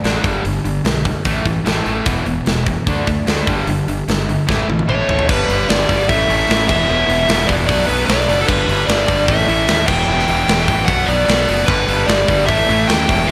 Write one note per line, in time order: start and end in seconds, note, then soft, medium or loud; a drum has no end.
0.04 0.18 A1 medium
0.04 0.23 D3 medium
0.04 0.24 A3 loud
0.04 0.24 D4 medium
0.04 snare loud
0.04 open hi-hat medium
0.24 0.38 G1 medium
0.24 0.43 G2 medium
0.24 0.43 D3 medium
0.24 0.43 G3 medium
0.24 kick loud
0.24 open hi-hat medium
0.45 0.58 G1 medium
0.45 0.63 G2 medium
0.45 0.63 D3 medium
0.45 open hi-hat medium
0.65 0.79 G1 medium
0.65 0.83 G2 medium
0.65 0.83 D3 medium
0.65 open hi-hat soft
0.84 1.12 B1 medium
0.84 1.03 G2 medium
0.84 1.03 D3 medium
0.84 snare loud
0.84 open hi-hat medium
1.05 1.23 G2 medium
1.05 1.23 D3 medium
1.05 kick medium
1.05 open hi-hat soft
1.25 1.39 A1 medium
1.25 1.44 A2 medium
1.25 1.44 E3 medium
1.25 1.45 A3 medium
1.25 kick loud
1.25 open hi-hat medium
1.45 1.59 A1 loud
1.45 1.64 A2 medium
1.45 1.64 E3 medium
1.45 kick medium
1.45 open hi-hat soft
1.65 1.79 A1 medium
1.65 1.84 A2 medium
1.65 1.84 E3 loud
1.65 1.85 A3 medium
1.65 snare loud
1.65 open hi-hat medium
1.85 2.00 A1 medium
1.85 2.04 A2 medium
1.85 2.05 E3 medium
1.85 2.05 A3 loud
1.85 open hi-hat medium
2.05 2.20 E1 medium
2.05 2.23 E2 medium
2.05 2.24 B2 medium
2.05 2.25 E3 loud
2.05 kick loud
2.05 open hi-hat medium
2.24 2.40 E1 medium
2.24 2.44 E2 medium
2.24 2.44 B2 medium
2.24 open hi-hat soft
2.45 2.74 E1 medium
2.45 2.64 E2 medium
2.45 2.64 B2 medium
2.45 snare medium
2.45 open hi-hat medium
2.66 2.84 E2 medium
2.66 2.85 B2 medium
2.66 kick medium
2.66 open hi-hat soft
2.86 3.01 D2 medium
2.86 3.06 D3 medium
2.86 3.06 A3 medium
2.86 3.06 D4 medium
2.86 kick loud
2.86 open hi-hat medium
3.07 3.21 D2 medium
3.07 3.25 D3 medium
3.07 3.25 A3 medium
3.07 kick medium
3.07 open hi-hat soft
3.26 3.41 D2 medium
3.26 3.46 D3 medium
3.26 3.46 A3 loud
3.26 3.46 D4 loud
3.26 snare loud
3.26 open hi-hat medium
3.47 3.61 G1 medium
3.47 3.66 G2 medium
3.47 3.66 D3 medium
3.47 3.66 G3 loud
3.47 kick medium
3.47 open hi-hat soft
3.67 3.81 G1 medium
3.67 3.86 G2 medium
3.67 3.86 D3 medium
3.67 open hi-hat medium
3.87 4.01 G1 medium
3.87 4.06 G2 medium
3.87 4.06 D3 medium
3.87 open hi-hat medium
4.08 4.35 G1 medium
4.08 4.26 G2 medium
4.08 4.26 D3 medium
4.08 snare loud
4.08 open hi-hat medium
4.28 4.46 G2 medium
4.28 4.46 D3 medium
4.28 open hi-hat soft
4.48 4.62 A1 medium
4.48 4.67 A2 medium
4.48 4.67 E3 medium
4.48 4.67 A3 medium
4.48 kick loud
4.48 snare medium
4.68 4.82 A1 medium
4.68 4.86 A2 medium
4.68 4.87 E3 medium
4.68 high tom medium
4.79 high tom medium
4.88 5.02 A1 medium
4.88 5.07 A2 loud
4.88 5.07 E3 medium
4.88 5.08 A3 loud
4.88 5.29 C#5 medium
4.88 mid tom medium
5.08 5.22 A1 medium
5.08 5.27 A2 medium
5.08 5.28 E3 medium
5.08 5.28 A3 loud
5.08 floor tom medium
5.19 floor tom medium
5.28 5.46 G1 loud
5.28 5.47 G2 medium
5.28 5.48 D3 loud
5.28 5.48 G3 loud
5.28 5.88 B3 loud
5.28 5.88 D4 loud
5.28 5.70 B4 medium
5.28 kick loud
5.28 crash loud
5.48 5.65 G1 medium
5.48 5.68 G2 medium
5.48 5.68 D3 medium
5.48 5.69 G3 loud
5.48 open hi-hat medium
5.69 5.86 G1 medium
5.69 5.88 G2 medium
5.69 5.88 D3 loud
5.69 5.89 G3 loud
5.69 6.09 D5 medium
5.69 snare loud
5.69 open hi-hat medium
5.89 6.06 G1 medium
5.89 6.07 G2 medium
5.89 6.07 D3 medium
5.89 6.08 G3 loud
5.89 6.08 B3 medium
5.89 6.08 D4 medium
5.89 kick medium
5.89 open hi-hat medium
6.08 6.26 A1 loud
6.08 6.27 A2 medium
6.08 6.27 E3 loud
6.08 6.27 A3 medium
6.08 6.68 C#4 loud
6.08 6.69 E4 loud
6.08 6.67 E5 medium
6.08 kick loud
6.08 open hi-hat medium
6.28 6.46 A1 medium
6.28 6.46 A2 medium
6.28 6.46 E3 medium
6.28 6.47 A3 medium
6.28 open hi-hat medium
6.47 6.66 A1 medium
6.47 6.67 A2 loud
6.47 6.67 E3 loud
6.47 6.67 A3 loud
6.47 open hi-hat medium
6.51 snare loud
6.67 6.86 E1 medium
6.67 6.86 E2 loud
6.67 6.87 B2 loud
6.67 6.87 E3 loud
6.67 7.28 G3 medium
6.67 7.28 B3 loud
6.67 7.29 E4 loud
6.67 7.51 E5 loud
6.67 kick loud
6.67 crash loud
6.87 7.06 E1 loud
6.87 7.05 E2 medium
6.87 7.05 B2 loud
6.87 7.06 E3 loud
7.06 7.25 E1 medium
7.06 7.26 E2 medium
7.06 7.27 B2 medium
7.06 7.27 E3 loud
7.06 open hi-hat medium
7.27 7.45 E1 medium
7.27 7.46 E2 loud
7.27 7.47 B2 medium
7.27 7.47 E3 loud
7.27 7.68 G3 medium
7.27 7.68 B3 medium
7.27 7.69 E4 medium
7.27 snare loud
7.27 open hi-hat medium
7.41 snare soft
7.47 7.66 E1 loud
7.47 7.67 E2 medium
7.47 7.66 B2 medium
7.47 7.67 E3 loud
7.47 7.53 D5 medium
7.47 kick medium
7.47 open hi-hat medium
7.66 7.86 B1 medium
7.66 7.87 B2 loud
7.66 7.88 F#3 medium
7.66 7.88 B3 medium
7.66 8.27 D4 loud
7.66 7.86 D5 medium
7.66 kick loud
7.66 open hi-hat medium
7.87 8.06 B1 medium
7.87 8.06 B2 medium
7.87 8.07 F#3 loud
7.87 8.08 B3 medium
7.87 8.06 B4 medium
7.87 open hi-hat medium
8.06 8.25 B1 medium
8.06 8.27 B2 loud
8.06 8.28 F#3 loud
8.06 8.28 B3 loud
8.06 8.38 D5 loud
8.06 snare loud
8.06 open hi-hat medium
8.28 8.46 F#1 medium
8.28 8.47 B2 medium
8.28 8.47 F#3 loud
8.28 8.48 B3 loud
8.28 8.47 D4 medium
8.28 open hi-hat medium
8.41 8.48 A4 medium
8.47 8.65 G1 medium
8.47 8.67 G2 medium
8.47 8.67 D3 loud
8.47 8.68 G3 loud
8.47 9.08 B3 loud
8.47 9.07 D4 loud
8.47 8.85 B4 medium
8.47 kick loud
8.47 crash loud
8.68 8.86 G1 loud
8.68 8.86 G2 medium
8.68 8.87 D3 medium
8.68 8.88 G3 medium
8.68 open hi-hat medium
8.87 9.05 G1 medium
8.87 9.07 G2 medium
8.87 9.08 D3 medium
8.87 9.08 G3 loud
8.87 9.29 D5 loud
8.87 snare loud
8.87 open hi-hat medium
9.08 9.25 G1 medium
9.08 9.27 G2 medium
9.08 9.27 D3 medium
9.08 9.28 G3 loud
9.08 9.27 B3 medium
9.08 9.27 D4 loud
9.08 kick medium
9.08 open hi-hat medium
9.27 9.45 A1 medium
9.27 9.47 A2 medium
9.27 9.48 E3 medium
9.27 9.48 A3 loud
9.27 9.88 C#4 loud
9.27 9.88 E4 loud
9.27 9.87 E5 medium
9.27 kick loud
9.27 open hi-hat medium
9.48 9.65 A1 medium
9.48 9.67 A2 medium
9.48 9.67 E3 medium
9.48 9.68 A3 medium
9.48 open hi-hat medium
9.68 9.85 D#2 medium
9.68 9.87 A2 medium
9.68 9.87 E3 loud
9.68 9.88 A3 loud
9.68 snare loud
9.68 open hi-hat medium
9.87 10.05 E1 medium
9.87 10.06 E2 loud
9.87 10.07 B2 loud
9.87 10.07 E3 loud
9.87 10.47 G3 loud
9.87 10.47 B3 loud
9.87 10.48 E4 medium
9.87 10.64 G5 loud
9.87 kick loud
9.87 crash loud
10.07 10.25 E1 loud
10.07 10.27 E2 medium
10.07 10.28 B2 medium
10.07 10.28 E3 loud
10.19 snare soft
10.28 10.45 E1 medium
10.28 10.47 E2 medium
10.28 10.47 B2 loud
10.28 10.48 E3 loud
10.28 open hi-hat medium
10.48 10.65 E1 medium
10.48 10.67 E2 loud
10.48 10.67 B2 medium
10.48 10.68 E3 loud
10.48 10.87 G3 medium
10.48 10.87 B3 medium
10.48 10.88 E4 medium
10.48 snare loud
10.48 open hi-hat medium
10.60 snare soft
10.66 10.85 A1 medium
10.66 10.87 E2 medium
10.66 10.87 B2 medium
10.66 10.88 E3 loud
10.66 10.85 G5 loud
10.66 kick medium
10.66 open hi-hat medium
10.86 11.05 B1 medium
10.86 11.07 B2 medium
10.86 11.08 F#3 loud
10.86 11.08 B3 loud
10.86 11.47 D4 loud
10.86 11.08 F#5 medium
10.86 kick loud
10.86 open hi-hat medium
11.06 11.25 B1 medium
11.06 11.27 B2 medium
11.06 11.27 F#3 medium
11.06 11.28 B3 loud
11.06 11.24 D5 medium
11.06 open hi-hat medium
11.25 11.45 B1 medium
11.25 11.47 B2 medium
11.25 11.47 F#3 loud
11.25 11.48 B3 loud
11.25 11.64 D5 medium
11.25 open hi-hat medium
11.30 snare loud
11.48 11.65 F#1 medium
11.48 11.67 B2 medium
11.48 11.67 F#3 medium
11.48 11.68 B3 loud
11.48 11.67 D4 medium
11.48 open hi-hat medium
11.66 11.85 G1 loud
11.66 11.86 G2 loud
11.66 11.87 D3 medium
11.66 11.87 G3 loud
11.66 12.27 B3 loud
11.66 12.26 D4 medium
11.66 12.08 B4 medium
11.66 kick loud
11.66 crash medium
11.88 12.05 G1 medium
11.88 12.07 G2 medium
11.88 12.07 D3 medium
11.88 12.08 G3 medium
11.88 open hi-hat medium
12.07 12.25 G1 medium
12.07 12.27 G2 loud
12.07 12.28 D3 loud
12.07 12.28 G3 loud
12.07 12.46 D5 medium
12.07 snare loud
12.07 open hi-hat medium
12.27 12.45 G1 medium
12.27 12.47 G2 medium
12.27 12.47 D3 medium
12.27 12.48 G3 medium
12.27 12.47 B3 medium
12.27 12.46 D4 loud
12.27 kick medium
12.27 open hi-hat medium
12.46 12.65 A1 medium
12.46 12.67 A2 medium
12.46 12.68 E3 medium
12.46 12.68 A3 loud
12.46 13.07 C#4 loud
12.46 13.08 E4 loud
12.46 12.88 E5 medium
12.46 kick loud
12.46 open hi-hat medium
12.68 12.85 A1 medium
12.68 12.87 A2 medium
12.68 12.88 E3 medium
12.68 12.88 A3 loud
12.68 open hi-hat medium
12.88 13.06 D#2 medium
12.88 13.07 A2 medium
12.88 13.07 E3 loud
12.88 13.08 A3 loud
12.88 13.29 G5 loud
12.88 snare loud
12.88 open hi-hat medium
13.08 13.26 E1 medium
13.08 13.27 E2 medium
13.08 13.28 B2 loud
13.08 13.28 E3 loud
13.08 13.31 G3 loud
13.08 13.31 B3 medium
13.08 13.31 E4 loud
13.08 kick loud
13.08 open hi-hat medium
13.27 13.31 E2 medium
13.27 13.31 E5 loud